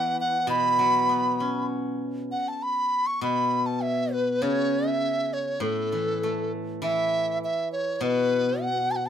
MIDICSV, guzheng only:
0, 0, Header, 1, 2, 480
1, 0, Start_track
1, 0, Tempo, 605449
1, 624, Time_signature, 2, 2, 24, 8
1, 3035, Tempo, 597610
1, 7262, End_track
2, 0, Start_track
2, 0, Title_t, "Guzheng"
2, 0, Program_c, 0, 107
2, 0, Note_on_c, 0, 52, 62
2, 0, Note_on_c, 0, 59, 40
2, 156, Note_off_c, 0, 59, 0
2, 373, Note_on_c, 0, 47, 67
2, 625, Note_on_c, 0, 54, 49
2, 864, Note_on_c, 0, 59, 36
2, 1098, Note_off_c, 0, 52, 0
2, 1112, Note_on_c, 0, 61, 38
2, 1589, Note_off_c, 0, 54, 0
2, 1825, Note_off_c, 0, 47, 0
2, 1833, Note_off_c, 0, 59, 0
2, 2079, Note_off_c, 0, 61, 0
2, 2548, Note_on_c, 0, 47, 57
2, 3508, Note_off_c, 0, 47, 0
2, 3508, Note_on_c, 0, 49, 64
2, 4459, Note_on_c, 0, 45, 58
2, 4461, Note_off_c, 0, 49, 0
2, 4718, Note_on_c, 0, 52, 36
2, 4967, Note_on_c, 0, 57, 43
2, 5426, Note_off_c, 0, 52, 0
2, 5436, Note_on_c, 0, 52, 56
2, 5918, Note_off_c, 0, 45, 0
2, 5931, Note_off_c, 0, 57, 0
2, 6391, Note_on_c, 0, 47, 63
2, 6874, Note_off_c, 0, 52, 0
2, 7262, Note_off_c, 0, 47, 0
2, 7262, End_track
0, 0, End_of_file